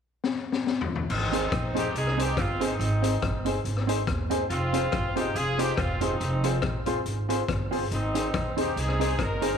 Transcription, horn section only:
1.10 C4 D#4
1.77 D#4 G4
1.96 D#4 G#4
2.19 D#4 G4
2.39 C4 F4
2.63 C4 D#4
4.50 C4 F4
5.17 D#4 G4
5.36 F4 G#4
5.59 D#4 G4
5.79 C4 F4
6.02 C4 D#4
7.93 C4 D#4
8.59 D#4 G4
8.78 D#4 G#4
9.20 D#4 A#4

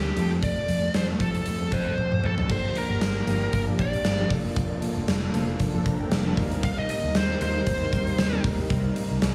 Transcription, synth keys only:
Already playing: F3 A#3 D4 A4 A#4
0.16 F3 A3 C4 A4
1.08 F3 A3 C4 A4
1.20 F3 A3 C4 A4
1.60 F3 A3 C4 A4
2.49 F3 A#3 D4 G4
3.27 F3 A#3 D4 G4
3.67 F3 A#3 D4 G4
3.78 F3 A#3 D4 G4
4.18 F3 A#3 D4 G4
4.30 F3 A#3 D4 A4
5.33 F3 A#3 D4 A4
5.74 F3 A#3 D4 A4
5.85 F3 A#3 D4 A4 A#5
6.00 G5
6.11 F5
6.25 F3 A#3 D4 A4
6.37 G3 C4 D#4 A#4 F5
7.40 G3 C4 D#4 A#4
7.81 G3 C4 D#4 A#4
7.92 G3 C4 D#4 A#4
8.32 G3 C4 D#4 A#4
8.70 G3 C4 D#4 A#4

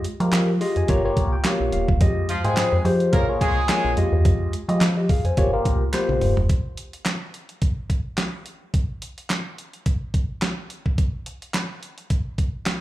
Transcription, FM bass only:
0.20 F3
0.33 F3
0.76 F2
0.89 G1
1.17 C2
1.60 A#1
1.73 D#1
1.88 E1
2.01 F2
2.45 G#2
2.73 F2
2.85 F3
3.13 A#1
3.41 C2
3.85 A#1
3.97 F2
4.13 E2
4.25 F2
4.69 F3
4.81 F3
5.25 F2
5.37 G1
5.65 C2
6.09 A#1
6.21 D#1
6.37 E1

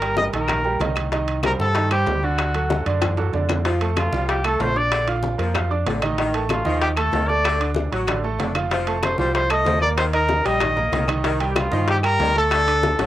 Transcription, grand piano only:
0.02 G3 G4 A#4
0.18 G3 G4 A#4
0.34 D#3 D#4 D#5
0.65 G3 G4 A#4
0.81 D#3 D#4 D#5
1.12 D#3 D#4 D#5
1.44 G3 G4 C5
1.75 D#3 D#4 D#5
1.91 G3 G4 C5
2.23 D3 D4 D5
2.55 F#3 F#4 A4
2.70 F#3 F#4 A4
2.86 D3 D4 D5
3.18 F#3 F#4 A4
3.34 D3 D4 D5
3.65 F3 F4 F5
3.81 A3 A4 A5
4.13 F3 F4 F5
4.44 A3 A4 A5
4.76 D4 D5 D6
5.07 F4 F5 F6
5.38 A#3 A#4 A#5
5.54 F3 F4 F5
5.70 D4 D5 D6
6.02 D#3 D#4 D#5
6.19 D#3 D#4 D#5
6.34 A3 A4 A5
6.65 D#3 D#4 D#5
6.97 A3 A4 A5
7.29 A3 A4 A5
7.60 D4 D5 D6
7.92 F#3 F#4 F#5
8.08 D3 D4 D5
8.24 A3 A4 A5
8.55 F3 F4 F5
8.71 F3 F4 F5
8.87 A3 A4 A5
9.19 F3 F4 F5
9.50 A3 A4 A5
9.82 A#3 A#4 A#5
10.13 D#4 D#5 D#6
10.45 G3 G4 G5
10.60 D#3 D#4 D#5
10.76 A#3 A#4 A#5
11.08 D#3 D#4 D#5
11.24 D#3 D#4 D#5
11.40 G3 G4 G5
11.71 D#3 D#4 D#5
12.03 G3 G4 G5
12.36 A3 A4 A5
12.67 D4 D5 D6
12.99 F#3 F#4 F#5

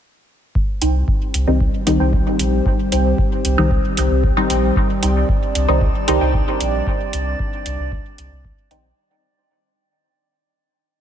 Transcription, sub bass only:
0.81 C2
1.34 C2
1.47 C2
1.87 C2
2.00 C2
2.39 A#1
2.92 C2
3.45 C2
3.58 C2
3.97 C2
4.11 C2
4.50 A#1
5.03 C2
5.55 C2
5.68 C2
6.08 C2
6.21 C2
6.60 A#1
7.13 C2
7.66 C2
7.79 C2
8.18 C2
8.32 C2
8.71 A#1

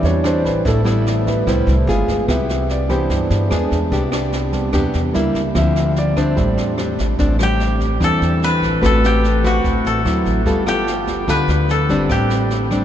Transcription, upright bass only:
0.03 E2
0.45 A1
0.65 A1
1.47 C2
1.67 C2
1.87 G1
2.08 G1
2.29 C2
3.10 G2
3.30 G2
3.51 E2
3.72 E2
3.92 C2
4.73 E2
4.94 E2
5.15 C#2
5.35 C#2
5.55 D2
6.37 A1
6.58 E2
6.99 A1
7.19 A1
8.01 E2
8.21 E2
8.62 A1
8.83 A1
9.64 A1
9.85 A1
10.05 D2
10.25 A1
10.46 G1
11.28 D2
11.48 D2
11.89 G1
12.10 A1

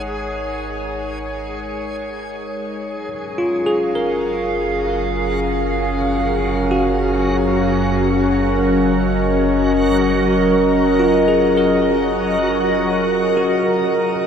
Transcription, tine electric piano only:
3.38 F4
3.66 G#4
3.95 A#4
6.71 F#4
10.99 F4
11.28 G#4
11.57 A#4
13.37 F#4

